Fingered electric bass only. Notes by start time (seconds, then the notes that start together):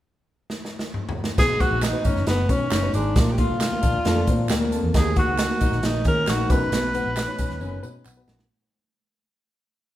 1.38 B1
1.71 A#1
2.05 G#1
2.16 F#1
2.27 F#1
2.49 B2
2.71 F#1
2.93 G#1
3.16 A#1
3.49 C2
3.84 A#1
3.94 D2
4.05 F2
4.28 A#2
4.49 D2
4.83 E2
4.94 D#2
5.28 C#2
5.62 B1
5.72 A#1
5.83 A#1
6.05 D#3
6.28 A#1
6.50 B1
6.72 B1
7.06 A#1
7.39 B1
7.50 D#2
7.61 F#1
7.83 B2
8.06 B1
8.28 A#1